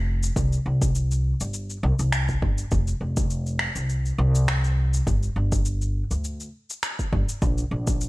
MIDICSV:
0, 0, Header, 1, 3, 480
1, 0, Start_track
1, 0, Tempo, 588235
1, 295, Time_signature, 4, 2, 24, 8
1, 6599, End_track
2, 0, Start_track
2, 0, Title_t, "Upright bass"
2, 0, Program_c, 0, 32
2, 0, Note_on_c, 0, 29, 100
2, 234, Note_off_c, 0, 29, 0
2, 295, Note_on_c, 0, 36, 94
2, 459, Note_off_c, 0, 36, 0
2, 536, Note_on_c, 0, 36, 90
2, 1074, Note_off_c, 0, 36, 0
2, 1147, Note_on_c, 0, 31, 75
2, 1435, Note_off_c, 0, 31, 0
2, 1495, Note_on_c, 0, 36, 99
2, 1580, Note_off_c, 0, 36, 0
2, 1626, Note_on_c, 0, 36, 92
2, 1914, Note_off_c, 0, 36, 0
2, 1977, Note_on_c, 0, 31, 78
2, 2140, Note_off_c, 0, 31, 0
2, 2218, Note_on_c, 0, 29, 86
2, 2380, Note_off_c, 0, 29, 0
2, 2454, Note_on_c, 0, 29, 88
2, 2993, Note_off_c, 0, 29, 0
2, 3064, Note_on_c, 0, 36, 79
2, 3354, Note_off_c, 0, 36, 0
2, 3414, Note_on_c, 0, 36, 102
2, 4074, Note_off_c, 0, 36, 0
2, 4136, Note_on_c, 0, 31, 85
2, 4300, Note_off_c, 0, 31, 0
2, 4373, Note_on_c, 0, 31, 95
2, 4912, Note_off_c, 0, 31, 0
2, 4984, Note_on_c, 0, 38, 77
2, 5273, Note_off_c, 0, 38, 0
2, 5814, Note_on_c, 0, 31, 91
2, 5900, Note_off_c, 0, 31, 0
2, 6054, Note_on_c, 0, 34, 96
2, 6218, Note_off_c, 0, 34, 0
2, 6293, Note_on_c, 0, 34, 91
2, 6599, Note_off_c, 0, 34, 0
2, 6599, End_track
3, 0, Start_track
3, 0, Title_t, "Drums"
3, 187, Note_on_c, 9, 82, 72
3, 268, Note_off_c, 9, 82, 0
3, 295, Note_on_c, 9, 36, 112
3, 298, Note_on_c, 9, 82, 56
3, 377, Note_off_c, 9, 36, 0
3, 379, Note_off_c, 9, 82, 0
3, 429, Note_on_c, 9, 82, 34
3, 510, Note_off_c, 9, 82, 0
3, 666, Note_on_c, 9, 36, 108
3, 668, Note_on_c, 9, 82, 67
3, 748, Note_off_c, 9, 36, 0
3, 749, Note_off_c, 9, 82, 0
3, 776, Note_on_c, 9, 82, 55
3, 858, Note_off_c, 9, 82, 0
3, 908, Note_on_c, 9, 82, 33
3, 990, Note_off_c, 9, 82, 0
3, 1146, Note_on_c, 9, 82, 63
3, 1227, Note_off_c, 9, 82, 0
3, 1254, Note_on_c, 9, 82, 54
3, 1335, Note_off_c, 9, 82, 0
3, 1386, Note_on_c, 9, 82, 34
3, 1467, Note_off_c, 9, 82, 0
3, 1624, Note_on_c, 9, 82, 65
3, 1706, Note_off_c, 9, 82, 0
3, 1734, Note_on_c, 9, 26, 76
3, 1736, Note_on_c, 9, 82, 58
3, 1815, Note_off_c, 9, 26, 0
3, 1817, Note_off_c, 9, 82, 0
3, 1864, Note_on_c, 9, 82, 33
3, 1867, Note_on_c, 9, 36, 63
3, 1946, Note_off_c, 9, 82, 0
3, 1949, Note_off_c, 9, 36, 0
3, 1977, Note_on_c, 9, 36, 105
3, 2059, Note_off_c, 9, 36, 0
3, 2105, Note_on_c, 9, 82, 70
3, 2186, Note_off_c, 9, 82, 0
3, 2213, Note_on_c, 9, 82, 49
3, 2217, Note_on_c, 9, 36, 112
3, 2295, Note_off_c, 9, 82, 0
3, 2299, Note_off_c, 9, 36, 0
3, 2345, Note_on_c, 9, 82, 32
3, 2427, Note_off_c, 9, 82, 0
3, 2583, Note_on_c, 9, 82, 65
3, 2587, Note_on_c, 9, 36, 105
3, 2665, Note_off_c, 9, 82, 0
3, 2669, Note_off_c, 9, 36, 0
3, 2695, Note_on_c, 9, 82, 54
3, 2777, Note_off_c, 9, 82, 0
3, 2826, Note_on_c, 9, 82, 32
3, 2908, Note_off_c, 9, 82, 0
3, 2932, Note_on_c, 9, 26, 76
3, 3013, Note_off_c, 9, 26, 0
3, 3065, Note_on_c, 9, 82, 59
3, 3146, Note_off_c, 9, 82, 0
3, 3178, Note_on_c, 9, 82, 51
3, 3260, Note_off_c, 9, 82, 0
3, 3309, Note_on_c, 9, 82, 34
3, 3391, Note_off_c, 9, 82, 0
3, 3549, Note_on_c, 9, 82, 62
3, 3631, Note_off_c, 9, 82, 0
3, 3657, Note_on_c, 9, 26, 76
3, 3659, Note_on_c, 9, 82, 55
3, 3739, Note_off_c, 9, 26, 0
3, 3741, Note_off_c, 9, 82, 0
3, 3788, Note_on_c, 9, 82, 35
3, 3870, Note_off_c, 9, 82, 0
3, 4027, Note_on_c, 9, 82, 68
3, 4109, Note_off_c, 9, 82, 0
3, 4136, Note_on_c, 9, 36, 111
3, 4138, Note_on_c, 9, 82, 51
3, 4218, Note_off_c, 9, 36, 0
3, 4220, Note_off_c, 9, 82, 0
3, 4267, Note_on_c, 9, 82, 30
3, 4348, Note_off_c, 9, 82, 0
3, 4504, Note_on_c, 9, 82, 62
3, 4506, Note_on_c, 9, 36, 99
3, 4586, Note_off_c, 9, 82, 0
3, 4588, Note_off_c, 9, 36, 0
3, 4614, Note_on_c, 9, 82, 52
3, 4695, Note_off_c, 9, 82, 0
3, 4745, Note_on_c, 9, 82, 31
3, 4827, Note_off_c, 9, 82, 0
3, 4985, Note_on_c, 9, 82, 58
3, 5067, Note_off_c, 9, 82, 0
3, 5094, Note_on_c, 9, 82, 50
3, 5176, Note_off_c, 9, 82, 0
3, 5225, Note_on_c, 9, 82, 32
3, 5306, Note_off_c, 9, 82, 0
3, 5466, Note_on_c, 9, 82, 62
3, 5548, Note_off_c, 9, 82, 0
3, 5572, Note_on_c, 9, 26, 70
3, 5575, Note_on_c, 9, 82, 55
3, 5654, Note_off_c, 9, 26, 0
3, 5656, Note_off_c, 9, 82, 0
3, 5705, Note_on_c, 9, 36, 63
3, 5706, Note_on_c, 9, 82, 32
3, 5787, Note_off_c, 9, 36, 0
3, 5787, Note_off_c, 9, 82, 0
3, 5815, Note_on_c, 9, 36, 97
3, 5896, Note_off_c, 9, 36, 0
3, 5947, Note_on_c, 9, 82, 64
3, 6028, Note_off_c, 9, 82, 0
3, 6054, Note_on_c, 9, 36, 101
3, 6054, Note_on_c, 9, 82, 50
3, 6135, Note_off_c, 9, 82, 0
3, 6136, Note_off_c, 9, 36, 0
3, 6184, Note_on_c, 9, 82, 32
3, 6266, Note_off_c, 9, 82, 0
3, 6422, Note_on_c, 9, 82, 60
3, 6425, Note_on_c, 9, 36, 92
3, 6503, Note_off_c, 9, 82, 0
3, 6507, Note_off_c, 9, 36, 0
3, 6535, Note_on_c, 9, 82, 49
3, 6599, Note_off_c, 9, 82, 0
3, 6599, End_track
0, 0, End_of_file